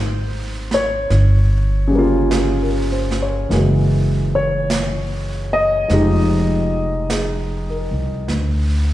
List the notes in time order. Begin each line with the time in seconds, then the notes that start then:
Already playing: G#1 C3 G3 A#3 D#4 C5
0.71 C#5, snare
1.10 G1, brush sweep, snare
1.88 C#3 G3
1.95 A#3 F4
2.31 G4, brush sweep, snare, hi-hat pedal
2.62 A#4
2.92 C5
3.11 snare
3.23 C#5
3.49 F#1 E3 G#3 A#3, brush sweep, snare
3.54 F#4
4.35 C#5
4.70 brush sweep, snare, hi-hat pedal
5.53 D#5
5.88 F1 F3 G#3 D#4, brush sweep, snare
5.93 G4
7.10 G#4, brush sweep, snare, hi-hat pedal
7.70 A#4
7.91 C2
8.28 D2, brush sweep, snare